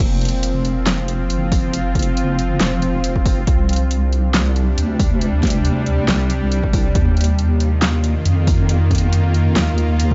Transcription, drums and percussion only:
0.21 closed hi-hat
0.25 closed hi-hat
0.28 closed hi-hat
0.43 closed hi-hat
0.65 closed hi-hat
0.86 snare, clap, closed hi-hat
1.08 closed hi-hat
1.30 closed hi-hat
1.52 kick, open hi-hat
1.73 closed hi-hat
1.95 kick, closed hi-hat
1.99 closed hi-hat
2.02 closed hi-hat
2.17 closed hi-hat
2.39 closed hi-hat
2.60 snare, clap, closed hi-hat
2.82 closed hi-hat
3.04 closed hi-hat
3.16 kick
3.26 kick, open hi-hat
3.47 kick, closed hi-hat
3.69 closed hi-hat
3.73 closed hi-hat
3.76 closed hi-hat
3.91 closed hi-hat
4.13 closed hi-hat
4.34 snare, clap, closed hi-hat
4.56 closed hi-hat
4.78 closed hi-hat
4.99 kick, open hi-hat
5.21 closed hi-hat
5.43 kick, snare, closed hi-hat
5.47 closed hi-hat
5.50 closed hi-hat
5.65 closed hi-hat
5.86 closed hi-hat
6.08 snare, clap, closed hi-hat
6.30 closed hi-hat
6.52 closed hi-hat
6.63 kick
6.73 kick, open hi-hat
6.95 kick, closed hi-hat
7.17 closed hi-hat
7.21 closed hi-hat
7.24 closed hi-hat
7.39 closed hi-hat
7.60 closed hi-hat
7.82 snare, clap, closed hi-hat
8.04 closed hi-hat
8.26 closed hi-hat
8.47 kick, open hi-hat
8.69 closed hi-hat
8.91 kick, closed hi-hat
8.95 closed hi-hat
8.98 closed hi-hat
9.13 closed hi-hat
9.34 closed hi-hat
9.56 snare, clap, closed hi-hat
9.78 closed hi-hat
10.00 closed hi-hat
10.11 kick

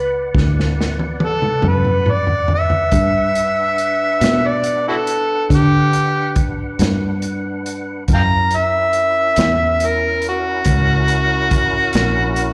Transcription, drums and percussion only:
0.35 kick, snare
0.60 snare
0.81 snare
0.99 high tom
1.20 high tom
1.42 mid tom
1.62 mid tom
1.84 mid tom
2.06 mid tom
2.27 floor tom
2.48 floor tom
2.70 floor tom
2.91 kick, closed hi-hat
3.35 closed hi-hat
3.78 closed hi-hat
4.21 snare, closed hi-hat
4.64 closed hi-hat
5.07 closed hi-hat
5.50 kick, snare, closed hi-hat
5.93 closed hi-hat
6.36 kick, closed hi-hat
6.79 snare, closed hi-hat
7.22 closed hi-hat
7.66 closed hi-hat
8.08 kick, closed hi-hat
8.51 closed hi-hat
8.93 closed hi-hat
9.36 snare, closed hi-hat
9.80 closed hi-hat
10.22 closed hi-hat
10.64 kick, closed hi-hat
11.08 closed hi-hat
11.51 kick, closed hi-hat
11.93 snare, closed hi-hat
12.36 closed hi-hat

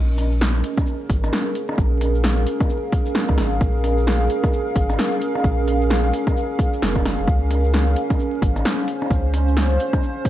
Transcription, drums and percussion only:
0.18 cross-stick, open hi-hat
0.32 shaker
0.41 snare, shaker
0.64 open hi-hat
0.77 kick, cross-stick, shaker
0.87 shaker
1.09 kick, open hi-hat
1.24 cross-stick, shaker
1.33 snare, shaker
1.55 open hi-hat, shaker
1.69 cross-stick
1.78 kick, shaker
2.01 cross-stick, open hi-hat
2.15 shaker
2.24 snare, shaker
2.47 open hi-hat
2.60 kick, cross-stick, shaker
2.69 shaker
2.92 kick, open hi-hat
3.06 shaker
3.15 snare, shaker
3.29 kick, cross-stick
3.38 cross-stick, snare, open hi-hat, shaker
3.61 kick, shaker
3.84 cross-stick, open hi-hat
3.98 shaker
4.07 snare, shaker
4.30 open hi-hat
4.44 kick, cross-stick, shaker
4.53 shaker
4.76 kick, open hi-hat
4.90 cross-stick, shaker
4.99 snare, shaker
5.22 open hi-hat, shaker
5.35 cross-stick
5.44 kick, shaker
5.68 cross-stick, open hi-hat
5.82 shaker
5.90 snare, shaker
6.13 open hi-hat
6.27 kick, cross-stick, shaker
6.37 shaker
6.59 kick, open hi-hat
6.73 shaker
6.82 snare, shaker
6.96 kick, cross-stick
7.06 cross-stick, snare, open hi-hat, shaker
7.28 kick, shaker
7.51 cross-stick, open hi-hat
7.64 shaker
7.74 snare, shaker
7.96 open hi-hat
8.10 kick, cross-stick, shaker
8.20 shaker
8.42 kick, open hi-hat
8.56 cross-stick, shaker
8.65 snare, shaker
8.88 open hi-hat, shaker
9.02 cross-stick
9.11 kick, shaker
9.34 cross-stick, open hi-hat
9.48 shaker
9.57 snare, shaker
9.80 open hi-hat
9.93 kick, cross-stick, shaker
10.03 shaker
10.25 kick, open hi-hat

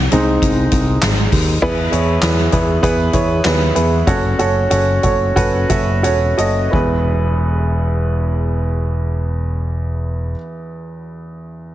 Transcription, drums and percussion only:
0.12 closed hi-hat
0.42 kick, closed hi-hat
0.72 kick, closed hi-hat
1.02 snare, clap, closed hi-hat
1.32 kick, open hi-hat
1.62 kick, crash
1.93 closed hi-hat
2.22 snare, clap, closed hi-hat
2.37 snare
2.52 kick, closed hi-hat
2.83 kick, closed hi-hat
3.13 kick, closed hi-hat
3.44 snare, clap, closed hi-hat
3.76 closed hi-hat
4.07 kick, closed hi-hat
4.39 closed hi-hat
4.71 closed hi-hat
5.03 kick, closed hi-hat
5.36 kick, closed hi-hat
5.70 kick, closed hi-hat
6.04 closed hi-hat
6.38 closed hi-hat
6.73 kick

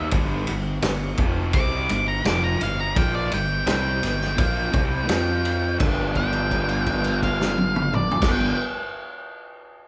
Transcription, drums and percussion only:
0.11 kick, ride
0.47 ride
0.82 snare, ride
1.17 kick, ride
1.53 kick, ride
1.89 ride
2.25 snare, ride
2.61 ride
2.96 kick, ride
3.32 ride
3.67 snare, ride
4.03 snare, ride
4.21 snare
4.38 kick, ride
4.73 kick, ride
5.09 snare, ride
5.45 ride
5.80 kick, crash
6.15 kick, crash
6.33 crash
6.51 kick, crash
6.69 crash
6.86 kick, crash
7.04 crash
7.23 kick, crash
7.41 snare
7.58 high tom
7.76 mid tom
7.93 mid tom
8.11 floor tom
8.22 kick, snare, crash

